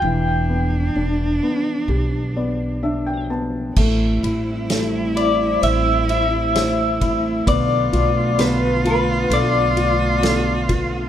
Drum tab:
CC |--------|x-------|--------|
RD |--------|-xxxxxxx|xxxxxxxx|
SD |--------|--o---o-|--o---o-|
BD |--------|o------o|o------o|